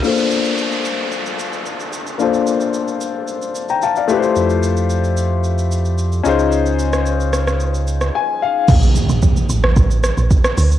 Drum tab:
CC |----------------|----------------|----------------|----------------|
HH |----------------|----------------|----------------|----------------|
SH |xxxxxxx-xxxxxxxx|xxxxxxx-xxxxxxxx|xxxxxxx-xxxxxxxx|xxxxxxxxxxxx----|
SD |----------------|----------------|----------------|---r--rr---r----|
BD |----------------|----------------|----------------|----------------|

CC |x---------------|
HH |--------------o-|
SH |xxxxxxx-xxxxxxxx|
SD |-------r--r--r--|
BD |o---o---o---o---|